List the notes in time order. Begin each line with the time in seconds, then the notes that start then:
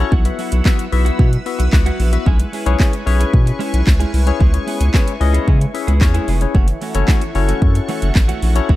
Already playing: E4 F#5
0.00 C#4 E4 F#4 A4 C#5
0.11 B1 F#3 B3 E4 F#4 B4 E6, kick
0.25 B3 E4 F#4 B4 E5, muted clean electric guitar stroke, closed hi-hat
0.38 F#3 B3 E4 F#4, open hi-hat
0.52 B1 F#3 B3 E4 F#4, closed hi-hat
0.65 F#3 B3 E4 F#4 B4 E5, kick, snare, clap
0.78 muted clean electric guitar stroke, closed hi-hat
0.92 B1 B3 E4 F#4 B4 E5, muted clean electric guitar stroke, open hi-hat
1.05 F#3 B3 E4 F#4, closed hi-hat
1.19 B2 F#3 B3 E4 F#4, kick
1.32 muted clean electric guitar stroke, closed hi-hat
1.46 B3 E4 F#4 B4 E5, muted clean electric guitar stroke, open hi-hat
1.59 B1 F#3 B3 E4 F#4, closed hi-hat
1.72 C#2 B3 E4 F#4 B4 F#5, muted clean electric guitar stroke, kick, snare, clap
1.86 F#3 B3 E4 F#4, closed hi-hat
1.99 A#1 F#3 B3 E4 F#4, open hi-hat
2.12 B3 E4 F#4 B4 E5, muted clean electric guitar stroke, closed hi-hat
2.26 B1 G#3 C#4 E4 G#4 G#5 C#6, kick
2.39 muted clean electric guitar stroke, closed hi-hat
2.52 G#3 C#4 E4 G#4, open hi-hat
2.66 B1 G#3 C#4 E4 G#4 B4 C#5, closed hi-hat
2.79 G#3 C#4 E4 G#4, kick, snare, clap
2.93 muted clean electric guitar stroke, closed hi-hat
3.06 B1 C#4 E4 G#4 B4 C#5, muted clean electric guitar stroke, open hi-hat
3.19 G#3 C#4 E4 G#4, closed hi-hat
3.34 B2, kick
3.46 muted clean electric guitar stroke, closed hi-hat
3.59 G#3 C#4 E4 G#4, open hi-hat
3.73 B1 G#3 C#4 E4 G#4, closed hi-hat
3.86 C#2, muted clean electric guitar stroke, kick, snare, clap
4.00 G#3 C#4 E4 G#4, closed hi-hat
4.13 C2 G#3 C#4 E4 G#4, open hi-hat
4.26 C#4 E4 G#4 B4 C#5, muted clean electric guitar stroke, closed hi-hat
4.40 C#2 G#3 B3 E4 G#4, kick
4.53 C#4 E4 G#4 B4 C#5, muted clean electric guitar stroke, closed hi-hat
4.66 G#3 B3 E4 G#4, open hi-hat
4.80 C#2 G#3 B3 E4 G#4, closed hi-hat
4.93 G#3 B3 C#4 E4 G#4 B4 C#5, kick, snare, clap
5.07 muted clean electric guitar stroke, closed hi-hat
5.20 C#2 C#4 E4 G#4 B4 D#5, muted clean electric guitar stroke, open hi-hat
5.33 G#3 B3 E4 G#4, closed hi-hat
5.47 C#3 G#3 B3 E4 G#4, kick
5.61 muted clean electric guitar stroke, closed hi-hat
5.74 C#4 E4 G#4 B4 E5, muted clean electric guitar stroke, open hi-hat
5.87 C#2 G#3 B3 E4 G#4, closed hi-hat
6.01 E2 C#4 E4 G#4 B4 C#5, muted clean electric guitar stroke, kick, snare, clap
6.14 G#3 B3 E4 G#4, closed hi-hat
6.27 F1 G#3 B3 E4 G#4, open hi-hat
6.41 C#4 E4 G#4 B4 C#5, muted clean electric guitar stroke, closed hi-hat
6.54 F#1 E3 A3 C#4 F#4 A4 F#5 C#6, kick
6.68 muted clean electric guitar stroke, closed hi-hat
6.81 E3 A3 C#4 F#4, open hi-hat
6.95 F#1 E3 A3 C#4 E4 F#4 A4 C#5, closed hi-hat
7.08 E3 A3 C#4 F#4, kick, snare, clap
7.22 muted clean electric guitar stroke, closed hi-hat
7.35 F#1 C#4 E4 F#4 A4 C#5, muted clean electric guitar stroke, open hi-hat
7.48 E3 A3 C#4 F#4, closed hi-hat
7.62 F#2, muted clean electric guitar stroke, kick
7.75 muted clean electric guitar stroke, closed hi-hat
7.88 E3 A3 C#4 F#4, open hi-hat
8.02 F#1 E3 A3 C#4 F#4, closed hi-hat
8.15 A1, muted clean electric guitar stroke, kick, snare, clap
8.28 E3 A3 C#4 F#4, closed hi-hat
8.42 A#1 E3 A3 C#4 F#4, open hi-hat
8.55 C#4 E4 F#4 A4 C#5, muted clean electric guitar stroke, closed hi-hat
8.69 B1 E3 B3 E4 F#4 B4 E6, kick